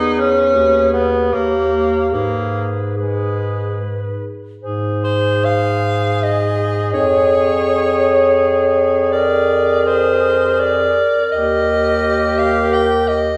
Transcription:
0, 0, Header, 1, 5, 480
1, 0, Start_track
1, 0, Key_signature, 5, "minor"
1, 0, Tempo, 754717
1, 848, Tempo, 821918
1, 1316, Time_signature, 3, 2, 24, 8
1, 2772, Key_signature, -4, "major"
1, 3248, Tempo, 760456
1, 3728, Tempo, 731707
1, 6128, Tempo, 709220
1, 8504, End_track
2, 0, Start_track
2, 0, Title_t, "Soprano saxophone"
2, 0, Program_c, 0, 64
2, 0, Note_on_c, 0, 71, 53
2, 338, Note_off_c, 0, 71, 0
2, 365, Note_on_c, 0, 71, 51
2, 848, Note_on_c, 0, 73, 50
2, 857, Note_off_c, 0, 71, 0
2, 1313, Note_off_c, 0, 73, 0
2, 1316, Note_on_c, 0, 71, 42
2, 1800, Note_off_c, 0, 71, 0
2, 1807, Note_on_c, 0, 71, 45
2, 2554, Note_off_c, 0, 71, 0
2, 3014, Note_on_c, 0, 72, 84
2, 3252, Note_on_c, 0, 77, 93
2, 3261, Note_off_c, 0, 72, 0
2, 3747, Note_on_c, 0, 75, 80
2, 3757, Note_off_c, 0, 77, 0
2, 4204, Note_off_c, 0, 75, 0
2, 4208, Note_on_c, 0, 73, 76
2, 5386, Note_off_c, 0, 73, 0
2, 5643, Note_on_c, 0, 74, 72
2, 6135, Note_on_c, 0, 72, 74
2, 6145, Note_off_c, 0, 74, 0
2, 6627, Note_on_c, 0, 74, 80
2, 6637, Note_off_c, 0, 72, 0
2, 7104, Note_off_c, 0, 74, 0
2, 7112, Note_on_c, 0, 75, 84
2, 7837, Note_on_c, 0, 77, 77
2, 7847, Note_off_c, 0, 75, 0
2, 8073, Note_on_c, 0, 79, 88
2, 8083, Note_off_c, 0, 77, 0
2, 8307, Note_on_c, 0, 75, 75
2, 8317, Note_off_c, 0, 79, 0
2, 8504, Note_off_c, 0, 75, 0
2, 8504, End_track
3, 0, Start_track
3, 0, Title_t, "Clarinet"
3, 0, Program_c, 1, 71
3, 0, Note_on_c, 1, 68, 57
3, 242, Note_off_c, 1, 68, 0
3, 350, Note_on_c, 1, 68, 51
3, 839, Note_on_c, 1, 67, 50
3, 849, Note_off_c, 1, 68, 0
3, 1309, Note_on_c, 1, 68, 48
3, 1318, Note_off_c, 1, 67, 0
3, 1799, Note_off_c, 1, 68, 0
3, 1803, Note_on_c, 1, 68, 45
3, 2552, Note_off_c, 1, 68, 0
3, 2776, Note_on_c, 1, 72, 70
3, 4184, Note_off_c, 1, 72, 0
3, 4208, Note_on_c, 1, 73, 66
3, 5650, Note_on_c, 1, 70, 63
3, 5660, Note_off_c, 1, 73, 0
3, 8419, Note_off_c, 1, 70, 0
3, 8504, End_track
4, 0, Start_track
4, 0, Title_t, "Tenor saxophone"
4, 0, Program_c, 2, 66
4, 0, Note_on_c, 2, 63, 72
4, 118, Note_on_c, 2, 61, 79
4, 128, Note_off_c, 2, 63, 0
4, 588, Note_off_c, 2, 61, 0
4, 592, Note_on_c, 2, 59, 60
4, 847, Note_on_c, 2, 58, 61
4, 855, Note_off_c, 2, 59, 0
4, 1305, Note_off_c, 2, 58, 0
4, 1309, Note_on_c, 2, 58, 61
4, 1626, Note_off_c, 2, 58, 0
4, 1803, Note_on_c, 2, 56, 46
4, 2270, Note_off_c, 2, 56, 0
4, 2773, Note_on_c, 2, 68, 62
4, 5623, Note_off_c, 2, 68, 0
4, 5649, Note_on_c, 2, 68, 61
4, 6891, Note_off_c, 2, 68, 0
4, 7100, Note_on_c, 2, 67, 54
4, 8501, Note_off_c, 2, 67, 0
4, 8504, End_track
5, 0, Start_track
5, 0, Title_t, "Bass clarinet"
5, 0, Program_c, 3, 71
5, 0, Note_on_c, 3, 40, 60
5, 355, Note_on_c, 3, 39, 57
5, 365, Note_off_c, 3, 40, 0
5, 844, Note_off_c, 3, 39, 0
5, 848, Note_on_c, 3, 39, 50
5, 1315, Note_on_c, 3, 44, 45
5, 1324, Note_off_c, 3, 39, 0
5, 2570, Note_off_c, 3, 44, 0
5, 2776, Note_on_c, 3, 44, 62
5, 4210, Note_on_c, 3, 41, 62
5, 4220, Note_off_c, 3, 44, 0
5, 6916, Note_off_c, 3, 41, 0
5, 7105, Note_on_c, 3, 39, 60
5, 8503, Note_off_c, 3, 39, 0
5, 8504, End_track
0, 0, End_of_file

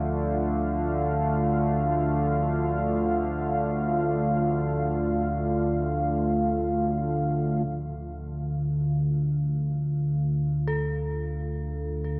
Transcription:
0, 0, Header, 1, 5, 480
1, 0, Start_track
1, 0, Key_signature, -1, "minor"
1, 0, Tempo, 500000
1, 11709, End_track
2, 0, Start_track
2, 0, Title_t, "Synth bell"
2, 0, Program_c, 0, 98
2, 7557, Control_c, 0, 64, 127
2, 10249, Note_on_c, 0, 69, 50
2, 11709, Note_off_c, 0, 69, 0
2, 11709, End_track
3, 0, Start_track
3, 0, Title_t, "Analog synth pad"
3, 0, Program_c, 1, 89
3, 0, Note_on_c, 1, 57, 73
3, 0, Note_on_c, 1, 65, 68
3, 0, Note_on_c, 1, 77, 73
3, 11709, Note_off_c, 1, 57, 0
3, 11709, Note_off_c, 1, 65, 0
3, 11709, Note_off_c, 1, 77, 0
3, 11709, End_track
4, 0, Start_track
4, 0, Title_t, "Singing bowl"
4, 0, Program_c, 2, 14
4, 0, Note_on_c, 2, 53, 61
4, 0, Note_on_c, 2, 65, 61
4, 7367, Note_off_c, 2, 65, 0
4, 7372, Note_off_c, 2, 53, 0
4, 11709, End_track
5, 0, Start_track
5, 0, Title_t, "Synth drone"
5, 0, Program_c, 3, 95
5, 0, Note_on_c, 3, 38, 74
5, 0, Note_on_c, 3, 50, 78
5, 7358, Note_off_c, 3, 38, 0
5, 7359, Note_off_c, 3, 50, 0
5, 7370, Note_on_c, 3, 38, 76
5, 7371, Note_on_c, 3, 50, 84
5, 11709, Note_off_c, 3, 38, 0
5, 11709, Note_off_c, 3, 50, 0
5, 11709, End_track
0, 0, End_of_file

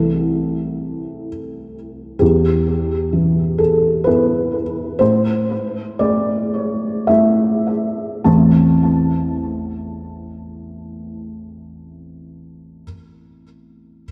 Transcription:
0, 0, Header, 1, 2, 480
1, 0, Start_track
1, 0, Key_signature, 0, "minor"
1, 0, Tempo, 925926
1, 1146, Time_signature, 3, 2, 24, 8
1, 2106, Tempo, 943396
1, 2586, Tempo, 1001669
1, 3066, Tempo, 1083032
1, 3546, Tempo, 1183432
1, 6396, End_track
2, 0, Start_track
2, 0, Title_t, "Felt piano"
2, 0, Program_c, 0, 0
2, 0, Control_c, 0, 64, 127
2, 0, Note_on_c, 0, 36, 33
2, 0, Note_on_c, 0, 52, 28
2, 0, Note_on_c, 0, 57, 25
2, 0, Note_on_c, 0, 64, 27
2, 0, Note_on_c, 0, 69, 51
2, 664, Note_off_c, 0, 69, 0
2, 1114, Note_off_c, 0, 36, 0
2, 1118, Note_off_c, 0, 52, 0
2, 1121, Note_off_c, 0, 57, 0
2, 1124, Note_off_c, 0, 64, 0
2, 1136, Note_on_c, 0, 67, 57
2, 1147, Note_on_c, 0, 40, 39
2, 1154, Control_c, 0, 64, 0
2, 1259, Control_c, 0, 64, 127
2, 1621, Note_on_c, 0, 52, 32
2, 1857, Note_on_c, 0, 69, 53
2, 1858, Note_off_c, 0, 67, 0
2, 2095, Note_on_c, 0, 71, 51
2, 2103, Note_off_c, 0, 69, 0
2, 2105, Note_on_c, 0, 59, 30
2, 2109, Note_on_c, 0, 64, 33
2, 2392, Note_off_c, 0, 52, 0
2, 2565, Note_off_c, 0, 59, 0
2, 2566, Note_off_c, 0, 40, 0
2, 2567, Note_off_c, 0, 64, 0
2, 2577, Note_on_c, 0, 72, 64
2, 2581, Note_off_c, 0, 71, 0
2, 2585, Note_on_c, 0, 45, 41
2, 2593, Control_c, 0, 64, 0
2, 2692, Control_c, 0, 64, 127
2, 3059, Note_on_c, 0, 74, 62
2, 3061, Note_off_c, 0, 72, 0
2, 3064, Note_on_c, 0, 57, 32
2, 3538, Note_on_c, 0, 76, 50
2, 3539, Note_off_c, 0, 57, 0
2, 3543, Note_off_c, 0, 74, 0
2, 3546, Note_on_c, 0, 57, 27
2, 3548, Note_on_c, 0, 64, 30
2, 4006, Note_off_c, 0, 45, 0
2, 4006, Note_off_c, 0, 57, 0
2, 4007, Note_off_c, 0, 64, 0
2, 4014, Note_on_c, 0, 33, 32
2, 4014, Note_on_c, 0, 81, 34
2, 4016, Note_on_c, 0, 52, 27
2, 4017, Note_on_c, 0, 40, 28
2, 4018, Note_off_c, 0, 76, 0
2, 4018, Note_on_c, 0, 57, 25
2, 4018, Note_on_c, 0, 60, 27
2, 4021, Note_on_c, 0, 64, 27
2, 4031, Control_c, 0, 64, 0
2, 4113, Control_c, 0, 64, 127
2, 5873, Note_off_c, 0, 33, 0
2, 5873, Note_off_c, 0, 81, 0
2, 5876, Note_off_c, 0, 40, 0
2, 5876, Note_off_c, 0, 52, 0
2, 5878, Note_off_c, 0, 57, 0
2, 5878, Note_off_c, 0, 60, 0
2, 5880, Note_off_c, 0, 64, 0
2, 6367, Control_c, 0, 64, 0
2, 6396, End_track
0, 0, End_of_file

